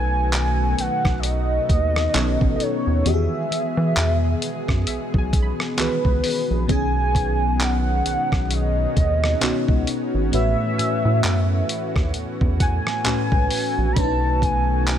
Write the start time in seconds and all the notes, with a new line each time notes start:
Already playing: B1 B2 D#3 F#3 A3 B3 C#4 D#4 F#4 B4 G#5
0.33 clap, closed hi-hat
0.78 F#5, closed hi-hat
1.05 B1, kick, cross-stick
1.19 D5
1.23 D#5, closed hi-hat
1.69 D#2, kick, closed hi-hat
1.96 cross-stick
2.13 B1 B2 D#3 B3 C#4 D#4 A4 C#5, clap, closed hi-hat
2.41 A1, kick
2.56 D#5
2.60 C#5, closed hi-hat
2.87 D#2
3.04 E2 B2 D#3 E3 G#3 B3 F#4 G4 G#4 E5, closed hi-hat
3.14 G#4
3.51 E3, closed hi-hat
3.77 E3
3.96 E2 B4, clap, closed hi-hat
4.42 closed hi-hat
4.68 F#2, kick, cross-stick
4.87 B1 C#4 E5, closed hi-hat
5.14 B1, kick
5.18 G#5
5.33 kick, closed hi-hat
5.42 B5
5.60 cross-stick
5.77 C#2 D#3 E3 B3 F#4 G#4 B4, clap, closed hi-hat
6.05 C#2, kick
6.24 open hi-hat
6.50 A#1
6.67 B1 B2 D#3 G#3 B3 C#4 F#4 G#4 G#5, kick, closed hi-hat
7.15 kick, closed hi-hat
7.60 F#5, clap, closed hi-hat
8.06 B1, closed hi-hat
8.32 B1, kick, cross-stick
8.51 D#5, closed hi-hat
8.97 D#2, kick, closed hi-hat
9.24 cross-stick
9.40 C#2 B2 B3 C#4 D#4 F#4, clap, closed hi-hat
9.68 C#2, kick
9.87 closed hi-hat
10.14 G#1
10.31 A1 A2 E3 A3 C#4 F#4 B4 E5, closed hi-hat
10.78 A2 G#5, closed hi-hat
11.05 A2
11.23 F#2, clap, closed hi-hat
11.69 closed hi-hat
11.96 D#2, kick, cross-stick
12.14 E2, closed hi-hat
12.41 E2, kick
12.60 F#5 G#5, kick, closed hi-hat
12.87 cross-stick
13.04 C#2 A2 A3 C#4 F#4 B4, clap, closed hi-hat
13.32 C#2, kick
13.51 open hi-hat
13.78 A#1
13.92 B2 A3 B5
13.96 B1 D#3 F#3 B3 C#4 D4 B4 A5, kick, closed hi-hat
14.04 D#4
14.42 G#5, kick, closed hi-hat
14.87 clap, closed hi-hat